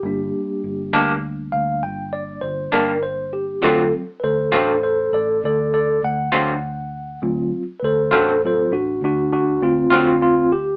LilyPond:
<<
  \new Staff \with { instrumentName = "Tine electric piano" } { \time 12/8 \key d \phrygian \tempo 4. = 67 << { g'4. r4 f''8 g''8 d''8 c''8 bes'8 c''8 g'8 | a'8 r8 <a' b' c''>8 <a' c''>8 <a' c''>8 <a' d''>8 <a' d''>8 <a' d''>8 fis''2 | r4 <a' b' c''>8 <a' c''>8 <a' c''>8 <d' fis'>8 <d' fis'>8 <d' fis'>8 <c' eis'>8 <c' eis'>8 <c' eis'>8 g'8 | } \\ { <g bes d'>1. | <fis c' eis'>8 r1 r4. | <fis c' eis'>8 r4. <fis c' eis'>8 r2. r8 | } >> }
  \new Staff \with { instrumentName = "Clean electric guitar" } { \clef bass \time 12/8 \key d \phrygian r4. <g, g bes d'>8 r2 r8 <g, g bes d'>8 r4 | <d fis c' eis'>8 r4 <d fis c' eis'>8 r2 r8 <d fis c' eis'>8 r4 | r4. <d fis c' eis'>8 r2 r8 <d fis c' eis'>8 r4 | }
  \new Staff \with { instrumentName = "Fingered electric bass" } { \clef bass \time 12/8 \key d \phrygian g,,8 r8 g,,8 d,4 d,8 g,,4 g,,8 g,,4. | d,8 r8 d,8 a,,4 a,,8 d,4 d,8 d,4. | d,8 r8 d,8 a,,4 a,,8 d,4 d,8 d,4. | }
>>